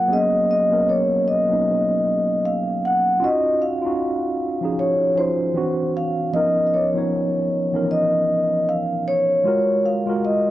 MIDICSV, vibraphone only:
0, 0, Header, 1, 2, 480
1, 0, Start_track
1, 0, Tempo, 779221
1, 59, Time_signature, 4, 2, 24, 8
1, 6471, End_track
2, 0, Start_track
2, 0, Title_t, "Vibraphone"
2, 0, Program_c, 0, 11
2, 0, Note_on_c, 0, 78, 97
2, 73, Note_off_c, 0, 78, 0
2, 80, Note_on_c, 0, 75, 94
2, 293, Note_off_c, 0, 75, 0
2, 313, Note_on_c, 0, 75, 89
2, 550, Note_on_c, 0, 73, 90
2, 553, Note_off_c, 0, 75, 0
2, 768, Note_off_c, 0, 73, 0
2, 787, Note_on_c, 0, 75, 93
2, 1513, Note_on_c, 0, 77, 90
2, 1524, Note_off_c, 0, 75, 0
2, 1753, Note_off_c, 0, 77, 0
2, 1757, Note_on_c, 0, 78, 94
2, 1995, Note_off_c, 0, 78, 0
2, 1997, Note_on_c, 0, 75, 93
2, 2212, Note_off_c, 0, 75, 0
2, 2229, Note_on_c, 0, 77, 86
2, 2951, Note_on_c, 0, 73, 90
2, 2965, Note_off_c, 0, 77, 0
2, 3187, Note_on_c, 0, 72, 90
2, 3192, Note_off_c, 0, 73, 0
2, 3638, Note_off_c, 0, 72, 0
2, 3676, Note_on_c, 0, 77, 89
2, 3891, Note_off_c, 0, 77, 0
2, 3902, Note_on_c, 0, 75, 101
2, 4091, Note_off_c, 0, 75, 0
2, 4107, Note_on_c, 0, 75, 66
2, 4140, Note_off_c, 0, 75, 0
2, 4150, Note_on_c, 0, 73, 84
2, 4839, Note_off_c, 0, 73, 0
2, 4873, Note_on_c, 0, 75, 92
2, 5352, Note_on_c, 0, 77, 93
2, 5360, Note_off_c, 0, 75, 0
2, 5569, Note_off_c, 0, 77, 0
2, 5592, Note_on_c, 0, 73, 91
2, 6071, Note_on_c, 0, 77, 82
2, 6079, Note_off_c, 0, 73, 0
2, 6312, Note_off_c, 0, 77, 0
2, 6314, Note_on_c, 0, 75, 78
2, 6471, Note_off_c, 0, 75, 0
2, 6471, End_track
0, 0, End_of_file